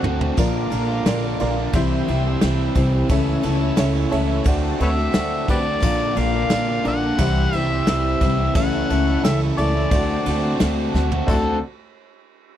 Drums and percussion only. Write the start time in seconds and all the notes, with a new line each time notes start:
0.04 mid tom
0.21 floor tom
0.38 kick, crash
0.71 ride
1.06 snare, ride
1.39 ride
1.73 kick, ride
2.08 ride
2.41 snare, ride
2.75 kick, ride
3.09 kick, ride
3.43 ride
3.77 snare, ride
4.12 ride
4.46 kick, ride
4.80 ride
5.14 snare, ride
5.48 kick, ride
5.82 kick, crash
6.16 ride
6.50 snare, ride
6.85 ride
7.18 kick, ride
7.53 ride
7.87 snare, ride
8.21 kick, ride
8.55 kick, ride
8.90 ride
9.24 snare, ride
9.58 ride
9.91 kick, ride
10.26 ride
10.60 snare, ride
10.95 snare
11.12 floor tom
11.28 kick, crash